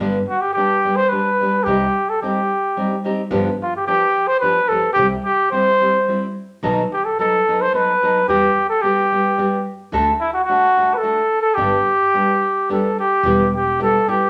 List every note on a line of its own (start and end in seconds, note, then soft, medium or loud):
0.00 0.17 G1 medium
0.00 0.17 G2 medium
0.00 0.17 D3 medium
0.00 0.17 G3 medium
0.00 0.18 B3 medium
0.00 0.17 D4 medium
0.00 0.18 G4 medium
0.28 0.43 F#4 medium
0.41 0.53 G4 medium
0.53 0.73 G3 soft
0.53 0.73 B3 soft
0.53 0.98 G4 medium
0.58 0.74 D4 soft
0.58 0.74 G4 soft
0.85 1.00 G3 soft
0.85 1.00 B3 soft
0.85 1.01 D4 soft
0.85 1.01 G4 soft
0.96 1.10 C5 medium
1.09 1.28 G3 soft
1.09 1.28 B3 soft
1.09 1.29 D4 soft
1.09 1.29 G4 medium
1.09 1.65 B4 medium
1.41 1.56 G3 soft
1.41 1.56 B3 soft
1.41 1.57 D4 soft
1.41 1.57 G4 medium
1.64 1.85 C2 medium
1.64 1.84 C3 medium
1.64 1.84 G3 medium
1.64 1.84 C4 medium
1.64 2.11 G4 medium
1.68 1.84 D#4 medium
1.68 1.84 G4 medium
2.09 2.21 A4 medium
2.21 2.39 G3 soft
2.21 2.39 C4 medium
2.21 2.39 D#4 medium
2.21 3.01 G4 medium
2.21 2.40 G4 medium
2.77 2.94 G3 soft
2.77 2.94 C4 medium
2.77 2.94 D#4 medium
2.77 2.94 G4 soft
3.04 3.20 G3 medium
3.04 3.21 C4 medium
3.04 3.21 D#4 medium
3.04 3.21 G4 medium
3.31 3.49 G1 medium
3.31 3.48 G2 medium
3.31 3.48 D3 medium
3.31 3.48 F3 medium
3.31 3.48 B3 medium
3.31 3.48 D4 medium
3.31 3.48 G4 medium
3.62 3.73 F4 medium
3.76 3.86 G4 medium
3.87 4.03 F3 soft
3.87 4.04 B3 soft
3.87 4.04 D4 medium
3.87 4.29 G4 medium
3.87 4.05 G4 soft
4.27 4.40 C5 medium
4.40 4.59 F3 medium
4.40 4.59 B3 soft
4.40 4.59 D4 medium
4.40 4.59 G4 medium
4.40 4.70 B4 medium
4.68 4.86 F3 soft
4.68 4.86 B3 soft
4.68 4.86 D4 medium
4.68 4.92 A4 medium
4.72 4.87 G4 medium
4.93 5.15 C2 medium
4.93 5.07 G4 medium
4.97 5.14 C3 medium
4.97 5.14 G3 medium
4.97 5.14 C4 medium
4.97 5.14 E4 medium
4.97 5.14 G4 medium
5.25 5.50 G4 medium
5.51 5.69 G3 soft
5.51 5.69 C4 medium
5.51 5.69 E4 soft
5.51 5.70 G4 soft
5.51 6.32 C5 medium
5.81 5.97 G3 soft
5.81 5.97 C4 medium
5.81 5.97 E4 soft
5.81 5.97 G4 soft
6.08 6.25 G3 soft
6.08 6.25 C4 soft
6.08 6.26 E4 medium
6.08 6.26 G4 soft
6.63 6.81 B1 medium
6.63 6.80 B2 medium
6.63 6.80 D#3 medium
6.63 6.81 F#3 medium
6.63 6.80 B3 medium
6.63 6.80 D#4 medium
6.63 6.80 A4 medium
6.93 7.06 G4 medium
7.05 7.18 A4 medium
7.19 7.36 F#3 soft
7.19 7.36 B3 soft
7.19 7.36 D#4 soft
7.19 7.63 A4 medium
7.19 7.37 A4 soft
7.48 7.64 F#3 soft
7.48 7.64 B3 medium
7.48 7.64 D#4 soft
7.48 7.64 A4 soft
7.61 7.74 C5 medium
7.73 7.91 F#3 soft
7.73 7.91 B3 medium
7.73 7.91 D#4 soft
7.73 7.91 A4 soft
7.73 8.25 B4 medium
8.03 8.18 F#3 medium
8.03 8.18 B3 medium
8.03 8.19 D#4 medium
8.03 8.19 A4 medium
8.28 8.47 E2 medium
8.28 8.46 E3 medium
8.28 8.46 G3 medium
8.28 8.46 B3 medium
8.28 8.46 F#4 medium
8.28 8.67 G4 medium
8.28 8.47 G4 medium
8.69 8.83 A4 medium
8.82 9.00 G3 soft
8.82 9.01 B3 soft
8.82 9.01 F#4 medium
8.82 9.66 G4 medium
8.82 9.01 G4 medium
9.12 9.28 G3 soft
9.12 9.28 B3 soft
9.12 9.28 F#4 soft
9.12 9.29 G4 soft
9.38 9.55 G3 medium
9.38 9.55 B3 medium
9.38 9.56 F#4 soft
9.38 9.56 G4 medium
9.92 10.11 D2 medium
9.92 10.10 D3 medium
9.92 10.10 A3 medium
9.92 10.10 D4 medium
9.92 10.10 F#4 medium
9.92 10.10 A4 medium
10.20 10.33 E4 medium
10.34 10.44 F#4 medium
10.44 10.95 F#4 medium
10.49 10.65 A3 soft
10.49 10.66 D4 soft
10.49 10.66 F#4 medium
10.49 10.66 A4 medium
10.77 10.92 A3 soft
10.77 10.93 D4 medium
10.77 10.93 F#4 medium
10.77 10.93 A4 medium
10.94 11.41 A4 medium
10.94 10.99 B4 medium
11.03 11.20 A3 medium
11.03 11.20 D4 medium
11.03 11.20 F#4 soft
11.03 11.21 A4 medium
11.42 11.56 A4 medium
11.55 11.76 G1 medium
11.55 11.75 G2 medium
11.55 11.75 D3 medium
11.55 11.75 G3 medium
11.55 11.75 B3 medium
11.55 11.75 D4 medium
11.55 12.67 G4 medium
11.55 11.75 G4 medium
12.14 12.30 G3 soft
12.14 12.31 B3 soft
12.14 12.31 D4 soft
12.14 12.31 G4 soft
12.69 12.86 G3 soft
12.69 12.86 B3 medium
12.69 12.87 D4 medium
12.69 12.87 G4 medium
12.69 12.97 A4 medium
13.00 13.50 G4 medium
13.23 13.95 E1 medium
13.23 13.42 E3 medium
13.23 13.42 G3 medium
13.23 13.42 B3 medium
13.23 13.42 E4 medium
13.23 13.42 G4 medium
13.56 13.79 G4 medium
13.79 13.96 G3 soft
13.79 13.97 B3 soft
13.79 13.97 E4 medium
13.79 13.97 G4 medium
13.79 14.10 A4 medium
14.08 14.24 G3 soft
14.08 14.24 B3 soft
14.08 14.24 E4 medium
14.08 14.24 G4 medium
14.08 14.30 G4 medium